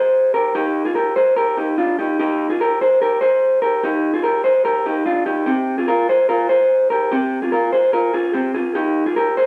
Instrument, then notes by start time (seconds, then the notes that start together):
clean electric guitar
Already playing: G#4 C5
0.34 G4 A#4
0.55 D#4 G4
0.85 F4 G#4
0.95 G4 A#4
1.16 G#4 C5
1.36 G4 A#4
1.57 D#4 G4
1.78 D4 F4
1.99 D#4 G4
2.19 D#4 G4
2.50 F4 G#4
2.61 G4 A#4
2.81 G#4 C5
3.02 G4 A#4
3.21 G#4 C5
3.62 G4 A#4
3.84 D#4 G4
4.14 F4 G#4
4.23 G4 A#4
4.44 G#4 C5
4.65 G4 A#4
4.86 D#4 G4
5.06 D4 F4
5.26 D#4 G4
5.46 C4 G4
5.78 F4 G#4
5.88 F4 A#4
6.09 G#4 C5
6.29 F4 A#4
6.49 G#4 C5
6.90 G4 A#4
7.11 C4 G4
7.42 F4 G#4
7.52 F4 A#4
7.73 G#4 C5
7.93 F4 A#4
8.14 F4 G#4
8.34 C4 G4
8.54 F4 G#4
8.75 D#4 G4
9.06 F4 G#4
9.16 G4 A#4
9.37 G#4 C5